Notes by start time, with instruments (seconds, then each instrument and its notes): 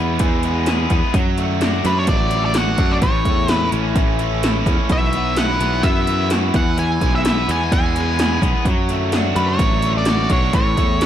Already playing: picked electric bass E2, overdriven electric guitar E2 E3 G#3 B3 E4
0.19 picked electric bass E2, overdriven electric guitar E3 G#3, kick, closed hi-hat
0.43 overdriven electric guitar G#3 B3, closed hi-hat
0.66 overdriven electric guitar E4 G#4, snare, closed hi-hat
0.90 picked electric bass E2, overdriven electric guitar B3, kick, closed hi-hat
1.14 picked electric bass F#2, overdriven electric guitar F#3, kick, closed hi-hat
1.38 overdriven electric guitar A3, closed hi-hat
1.61 overdriven electric guitar D4 F#4, snare, closed hi-hat
1.74 snare
1.84 picked electric bass F#2, overdriven electric guitar F#3 D4, lead electric guitar B4, snare, closed hi-hat
1.99 lead electric guitar C#5
2.07 picked electric bass A1, overdriven electric guitar F#3 A3, lead electric guitar D5, kick, closed hi-hat
2.31 overdriven electric guitar D4, closed hi-hat
2.36 overdriven electric guitar A3
2.45 lead electric guitar D5
2.54 overdriven electric guitar F#4, lead electric guitar F#5, snare, closed hi-hat
2.78 picked electric bass F#2, overdriven electric guitar D4, kick, closed hi-hat
2.92 lead electric guitar D5
3.02 picked electric bass A1, overdriven electric guitar A2, lead electric guitar C#5, kick, closed hi-hat
3.25 picked electric bass E2, overdriven electric guitar A3, kick, closed hi-hat
3.48 overdriven electric guitar C#4 E4, lead electric guitar B4, snare, closed hi-hat
3.72 picked electric bass A1, overdriven electric guitar E3 C#4, closed hi-hat
3.95 picked electric bass A1, overdriven electric guitar E3 A3, kick, closed hi-hat
4.19 overdriven electric guitar A3 C#4, closed hi-hat
4.43 overdriven electric guitar E4 A4, snare, closed hi-hat
4.66 picked electric bass E2, overdriven electric guitar C#4, kick, closed hi-hat
4.89 picked electric bass B1, overdriven electric guitar B2, lead electric guitar E5, kick, closed hi-hat
5.13 overdriven electric guitar F#3 B3, closed hi-hat
5.37 overdriven electric guitar E4, lead electric guitar F#5, snare, closed hi-hat
5.50 snare
5.59 picked electric bass B1, overdriven electric guitar E3 B3, snare, closed hi-hat
5.83 picked electric bass F#2, overdriven electric guitar E3 B3, lead electric guitar E5, kick, closed hi-hat
6.07 overdriven electric guitar F#3 E4, closed hi-hat
6.30 overdriven electric guitar E4 F#4, snare, closed hi-hat
6.54 picked electric bass E2, overdriven electric guitar E2 E3, lead electric guitar F#5, kick, closed hi-hat
6.78 overdriven electric guitar E2 E3, lead electric guitar G#5, closed hi-hat
7.01 picked electric bass B1, overdriven electric guitar G#3, kick, closed hi-hat
7.15 lead electric guitar E5
7.24 overdriven electric guitar B3 E4, snare, closed hi-hat
7.38 snare
7.49 picked electric bass E2, overdriven electric guitar E3 B3, lead electric guitar G#5, closed hi-hat
7.72 picked electric bass E2, overdriven electric guitar E3 G#3, lead electric guitar G#5, kick, closed hi-hat
7.96 overdriven electric guitar G#3 B3, closed hi-hat
8.19 overdriven electric guitar E4 G#4, snare, closed hi-hat
8.42 picked electric bass B1, overdriven electric guitar B3, kick, closed hi-hat
8.65 picked electric bass F#2, overdriven electric guitar F#3, kick, closed hi-hat
8.89 overdriven electric guitar A3, closed hi-hat
9.12 overdriven electric guitar D4 F#4, snare, closed hi-hat
9.36 picked electric bass F#2, overdriven electric guitar F#3 D4, lead electric guitar B4, closed hi-hat
9.49 lead electric guitar C#5
9.59 picked electric bass A1, overdriven electric guitar F#3 A3, kick, closed hi-hat
9.82 overdriven electric guitar A3 D4, closed hi-hat
9.98 lead electric guitar D5
10.05 overdriven electric guitar F#4, snare, closed hi-hat
10.29 picked electric bass B1, overdriven electric guitar D4, lead electric guitar C#5, kick, closed hi-hat
10.53 picked electric bass A1, overdriven electric guitar A2, lead electric guitar C#5, kick, closed hi-hat
10.77 picked electric bass E2, overdriven electric guitar A3, kick, closed hi-hat
10.99 overdriven electric guitar C#4 E4, snare, closed hi-hat